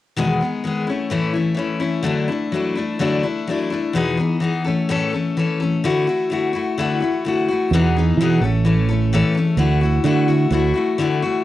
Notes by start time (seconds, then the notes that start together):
0.17 E2 B2 D#3 G#3 B3 G#4
0.41 D#3 B3 G#4
0.64 D#3 G#3 B3 G#4
0.87 C#4 E4
0.91 A3
1.10 A2 E3 A3 C#4 E4
1.33 A3 C#4 E4
1.54 E3 A3 C#4
1.59 E4
1.80 A3 C#4 E4
2.03 D3 F#3 A3 D4 E4
2.28 D4 E4
2.32 A3
2.52 F#3 A3 D4 E4
2.75 A3 D4 E4
2.99 D3 F#3 A3 D4 E4
3.23 A3 D4 E4
3.47 F#3 A3 D4 E4
3.70 A3 D4 E4
3.93 E2 B2 E3 B3 D#4 G#4
4.17 E3 B3 D#4 G#4
4.40 E3 B3 D#4 G#4
4.64 A3 C#4 A4
4.89 A2 E3 A3 C#4 A4
5.13 A3 C#4 A4
5.37 E3 A3 C#4 A4
5.60 A3 C#4 A4
5.84 D3 A3 E4 F#4
6.07 A3 E4 F#4
6.30 D3 A3 E4 F#4
6.53 A3 E4 F#4
6.78 D3 A3 E4 F#4
7.00 A3 E4 F#4
7.25 D3 A3 E4 F#4
7.49 E4 F#4
7.53 A3
7.71 E2 B2 E3 B3 G#4
7.75 D#4
7.97 E3 B3 D#4 G#4
8.17 E2 B2 E3
8.21 B3 D#4 G#4
8.41 A1 C#4 A4
8.45 A3
8.65 E3 A3 C#4 A4
8.89 A3 C#4 A4
9.13 A2 E3 A3 C#4 A4
9.35 A3 C#4 A4
9.57 D2 D3 A3 E4 F#4
9.81 E4 F#4
9.85 A3
10.04 D3 A3 E4 F#4
10.28 A3 E4 F#4
10.50 D2 D3 A3 E4 F#4
10.74 A3 E4 F#4
10.98 D3 A3 E4 F#4
11.22 A3 E4 F#4